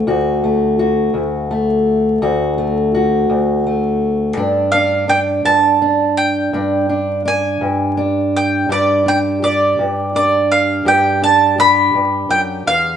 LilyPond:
<<
  \new Staff \with { instrumentName = "Mandolin" } { \time 12/8 \key g \lydian \tempo 4. = 55 r1. | r8 f''8 g''8 a''4 g''4. gis''4 r8 g''8 | d''8 g''8 d''4 d''8 f''8 g''8 a''8 b''4 g''8 f''8 | }
  \new Staff \with { instrumentName = "Steel-string acoustic guitar" } { \time 12/8 \key g \lydian << { <a fis'>8 a8 fis'4 a4 fis'8 a8 fis'4 a4 | d'8 d'8 d'4 d'4 d'8 d'8 d'4 d'4 | g'8 d'8 g'4 d'4 g'8 d'8 g'2 | } \\ { d,4. d,4. d,4. d,4. | g,4. g,4. g,4. g,4. | g,4. g,4. g,4. g,8 fis,8 e,8 | } >> }
>>